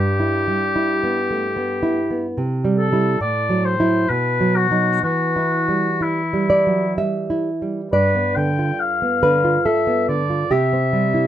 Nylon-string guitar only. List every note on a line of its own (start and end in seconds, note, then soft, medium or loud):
0.00 2.33 G2 soft
0.20 0.64 E4 soft
0.48 0.92 G3 soft
0.76 1.19 E4 soft
1.03 1.46 B3 soft
1.30 1.57 A3 soft
1.56 1.99 B3 soft
1.83 2.26 E4 soft
2.10 2.37 B3 soft
2.38 3.18 C3 soft
2.64 2.91 G3 soft
2.92 3.18 G3 soft
2.92 3.18 E4 soft
3.21 4.07 A2 soft
3.49 3.78 F#3 soft
3.79 4.06 F#3 soft
3.79 4.07 E4 soft
4.10 5.01 B2 soft
4.40 4.70 F#3 soft
4.71 5.00 F#3 soft
4.71 5.01 D#4 soft
5.03 7.88 E3 soft
5.36 5.89 E4 soft
5.68 6.21 G3 soft
6.01 6.49 E4 soft
6.33 6.84 G3 soft
6.50 6.95 D5 medium
6.67 6.98 F#3 soft
6.98 7.49 G3 soft
6.98 7.88 E5 soft
7.30 7.80 E4 soft
7.62 7.92 G3 soft
7.93 10.48 G2 soft
7.93 9.18 D5 medium
8.15 8.49 B3 soft
8.37 8.71 D3 soft
8.59 9.27 F4 soft
9.02 9.36 B3 soft
9.23 9.57 D3 soft
9.23 9.64 B4 medium
9.44 10.13 F4 soft
9.66 10.48 A4 medium
9.87 10.22 B3 soft
10.09 10.43 D3 soft
10.30 10.51 F4 soft
10.51 11.27 C3 soft
10.51 11.27 G4 medium
10.73 11.07 C4 soft
10.93 11.27 G3 soft
11.14 11.27 E4 soft